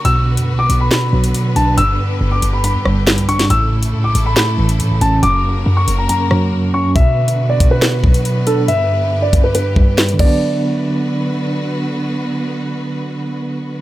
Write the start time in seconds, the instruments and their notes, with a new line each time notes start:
Already playing: string section F#4
0.05 808-style bass B1, tine electric piano B2, string section D3 B3 B4, grand piano E6, closed hi-hat
0.37 808-style bass F#2, closed hi-hat
0.54 808-style bass B1
0.59 grand piano D6
0.70 808-style bass B1, closed hi-hat
0.81 grand piano B5
0.91 tine electric piano B2, grand piano B5, snare, clap
1.13 808-style bass B1, tine electric piano F#3
1.24 closed hi-hat
1.34 closed hi-hat
1.56 808-style bass B1, tine electric piano D4, grand piano A5, closed hi-hat
1.77 808-style bass G1, tine electric piano G2, string section G4, grand piano E6, closed hi-hat
2.21 808-style bass G1
2.32 grand piano D6
2.42 808-style bass G1, closed hi-hat
2.53 grand piano B5
2.64 tine electric piano G2, grand piano B5, closed hi-hat
2.75 808-style bass G2
2.85 808-style bass G1, tine electric piano G3, cross-stick
3.07 snare, clap
3.18 808-style bass B1, closed hi-hat
3.29 tine electric piano D4, grand piano C#6, closed hi-hat
3.34 808-style bass G1
3.39 snare, closed hi-hat
3.50 808-style bass A1, tine electric piano A2, string section C#3 A3 E4 A4, grand piano E6, closed hi-hat
3.83 closed hi-hat
3.93 808-style bass A2
4.04 808-style bass A1, grand piano D6
4.15 808-style bass A1, closed hi-hat
4.26 grand piano B5
4.36 tine electric piano A2, grand piano B5, snare, clap
4.58 808-style bass A1, tine electric piano E3
4.69 closed hi-hat
4.80 808-style bass A2, closed hi-hat
4.91 808-style bass A1
5.01 808-style bass A1, tine electric piano C#4, grand piano A5, closed hi-hat
5.22 808-style bass F#1, tine electric piano F#2, string section A#3 F#4 A#4, grand piano D6, closed hi-hat
5.66 808-style bass F#2
5.77 grand piano C#6
5.88 808-style bass F#1, closed hi-hat
5.98 grand piano A#5
6.09 tine electric piano F#2, grand piano A#5, closed hi-hat
6.31 808-style bass F#2, tine electric piano F#3, cross-stick
6.74 tine electric piano C#4, grand piano C#6
6.96 string section D3 B3 F#4 B4, grand piano E5, kick, closed hi-hat
7.28 closed hi-hat
7.50 grand piano D5
7.60 kick, closed hi-hat
7.71 grand piano B4
7.82 tine electric piano B2, grand piano B4, snare, clap
8.03 tine electric piano F#3, kick
8.14 closed hi-hat
8.25 closed hi-hat
8.47 tine electric piano D4, grand piano A4, closed hi-hat
8.68 tine electric piano G2, string section D3 G4, grand piano E5, closed hi-hat
9.22 grand piano D5
9.33 kick, closed hi-hat
9.44 grand piano B4
9.55 tine electric piano G2, grand piano B4, closed hi-hat
9.76 tine electric piano G3, kick
9.98 snare, clap
10.09 closed hi-hat
10.13 tine electric piano D3 F#3
10.19 string section D3 B3 F#4 B4, tine electric piano B3, grand piano D5, kick, crash
10.25 tine electric piano D4